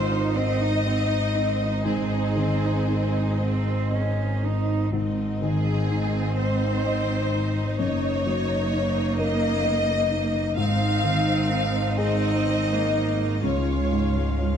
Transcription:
0.00 4.93 G#1 medium
0.00 1.82 G#2 medium
0.00 0.17 D#3 medium
0.00 0.13 C4 medium
0.00 0.67 D#4 medium
0.00 4.88 D#4 medium
0.00 0.38 F4 medium
0.00 0.33 C5 loud
0.00 4.92 C5 medium
0.00 4.88 D#5 medium
0.11 0.37 D#4 medium
0.35 0.62 C4 medium
0.35 1.85 D#4 medium
0.35 1.16 C5 medium
0.35 1.85 D#5 loud
0.61 0.84 D#4 medium
0.84 1.11 C4 medium
0.84 1.66 D#5 medium
1.10 1.37 D#4 medium
1.35 1.63 C4 medium
1.35 1.86 D#4 medium
1.62 1.87 D#4 soft
1.85 4.89 G#2 medium
1.85 4.13 C4 medium
1.85 2.15 C4 medium
1.85 4.39 G#4 medium
2.13 2.41 D#4 soft
2.36 3.19 D#3 medium
2.36 2.67 C4 medium
2.65 2.90 D#4 soft
2.87 3.19 C4 soft
2.87 3.70 D#4 soft
3.17 3.41 D#4 soft
3.38 3.97 C4 medium
3.38 4.22 C5 soft
3.91 4.73 D#5 soft
3.95 4.46 C#4 medium
4.42 4.93 D#4 soft
4.42 4.94 D#4 medium
4.93 7.82 G#1 medium
4.93 7.75 G#2 medium
4.93 7.76 C4 medium
4.93 10.53 D#4 medium
4.93 10.53 D#5 medium
5.41 6.19 D#3 medium
5.41 6.34 G#4 medium
5.91 6.67 D#4 medium
6.38 7.79 C5 loud
6.38 7.14 C5 medium
6.86 7.60 D#5 medium
7.32 7.79 D#4 medium
7.79 10.58 F#1 medium
7.79 10.52 F#2 medium
7.79 10.56 A#3 medium
7.79 10.53 A#3 medium
7.79 9.15 C#5 loud
8.26 8.99 F#3 medium
8.72 9.46 D#4 medium
9.18 9.92 A#4 medium
9.18 10.56 D#5 loud
9.64 10.38 D#5 medium
10.10 10.56 D#4 medium
10.56 13.45 G#1 medium
10.56 13.40 G#2 medium
10.56 14.57 G#3 medium
10.56 11.94 C4 medium
10.56 13.39 D#4 medium
10.56 11.94 D#4 medium
10.56 13.43 C5 medium
10.56 11.94 F5 loud
11.04 11.79 D#3 medium
11.50 12.26 D#4 medium
11.95 12.74 C4 medium
11.95 13.41 D#4 medium
11.95 12.75 G#4 medium
11.95 13.42 D#5 loud
12.46 13.24 C5 medium
12.72 13.45 A#3 medium
12.94 13.43 D#4 medium
13.43 14.57 C#2 medium
13.43 14.57 G#3 medium
13.43 14.57 F4 medium
13.43 14.57 C#5 soft
13.43 14.57 C#5 medium
13.43 14.57 F5 soft
13.92 14.57 G#2 soft
14.42 14.57 F4 soft

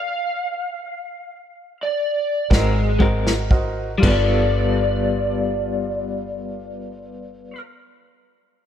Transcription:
0.00 1.77 F5 medium
1.83 2.51 D5 medium
2.50 3.99 G#1 medium
2.50 2.82 C4 soft
2.50 2.88 F#4 soft
2.50 2.81 F#4 soft
2.50 2.80 A#4 soft
2.50 2.88 A#4 soft
2.50 2.88 C5 soft
2.50 2.88 D#5 soft
2.50 kick medium
2.50 snare medium
2.54 3.01 G#4 medium
2.54 3.01 D#5 medium
2.99 3.30 G#3 soft
2.99 3.31 C4 soft
2.99 3.38 F#4 soft
2.99 3.31 F#4 medium
2.99 3.38 A#4 soft
2.99 3.32 A#4 medium
2.99 3.38 C5 soft
2.99 3.38 D#5 medium
2.99 kick medium
3.27 snare medium
3.50 3.90 F#4 medium
3.50 3.90 A#4 medium
3.50 3.90 C5 soft
3.50 3.90 D#5 medium
3.50 kick medium
3.98 7.53 G3 medium
3.98 7.51 F4 medium
3.98 7.52 A4 medium
4.02 7.54 G1 medium
4.02 7.60 B3 medium
4.02 7.54 B4 medium
4.02 7.55 D5 medium
4.02 kick medium
4.02 crash medium
4.09 7.67 F4 medium
4.09 7.60 D5 medium
4.18 7.73 A4 medium

